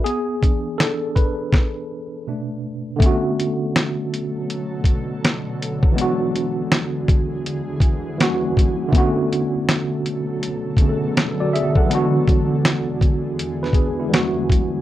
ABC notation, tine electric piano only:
X:1
M:4/4
L:1/16
Q:"Swing 16ths" 1/4=81
K:Bdor
V:1 name="Tine electric piano"
[B,G]4 [DA]2 [DB]8 z2 | z16 | z16 | z12 z [Fd] [Ge] [Af]- |
[Af] z8 [DB] [B,G] [G,E]2 z3 |]
V:2 name="Tine electric piano"
z2 [E,D]6 z4 [B,,A,D]2 z2 | [D,A,B,CF]16 | [E,G,B,DF]12 [E,=G,^A,CF]4 | [D,A,B,CF]8- [D,A,B,CF]2 [D,A,B,CGA]6 |
[E,G,B,DF]12 [E,=G,^A,CF]4 |]